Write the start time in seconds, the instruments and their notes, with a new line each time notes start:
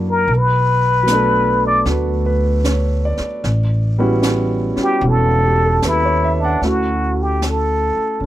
Already playing: upright bass F#2, grand piano F#3 A#3 D4 E4 F#4
0.10 muted trumpet A#4
0.28 upright bass B1, brush sweep
0.37 muted trumpet B4
1.03 grand piano F#3 B3
1.07 grand piano A3 D4, snare, hi-hat pedal
1.14 grand piano A4
1.67 muted trumpet D5
1.85 upright bass D2, grand piano F#4 B4, brush sweep, snare
2.26 grand piano B4
2.64 grand piano C#5, snare, hi-hat pedal
3.05 grand piano D5
3.17 muted upright bass stroke, snare
3.44 upright bass A1, brush sweep, snare
3.98 grand piano G3 B3 C#4 E4 F#4
4.23 snare, hi-hat pedal
4.76 grand piano C#4 E4 F#4, muted upright bass stroke, snare
4.82 muted trumpet G4
5.01 upright bass E1, brush sweep
5.09 muted trumpet A4
5.44 grand piano G4
5.65 grand piano A4
5.82 upright bass D#2, grand piano B4, snare, hi-hat pedal
5.87 muted trumpet E4
6.05 grand piano C#5
6.24 grand piano E5
6.40 muted trumpet D4
6.45 grand piano F#5
6.61 upright bass D2, grand piano A3 C#4 E4 F#4, brush sweep, snare
6.66 muted trumpet F#4
7.22 muted trumpet G4
7.42 snare, hi-hat pedal
7.49 muted trumpet A4
7.96 muted upright bass stroke
8.20 upright bass A1, grand piano C#4, brush sweep